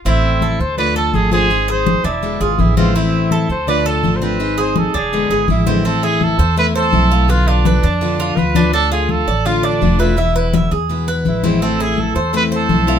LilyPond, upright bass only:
\new Staff \with { instrumentName = "Upright bass" } { \clef bass \time 4/4 \key a \minor \tempo 4 = 166 a,,4. d,4. gis,,4~ | gis,,4. e,,4 gis,,8 a,,4~ | a,,4. d,4. gis,,4~ | gis,,4. e,,4 gis,,8 a,,4~ |
a,,4. e,4. b,,4~ | b,,4. f,4. d,4~ | d,4. a,,4. e,,4~ | e,,4. e,4. a,,4~ |
a,,4. e,4. b,,4 | }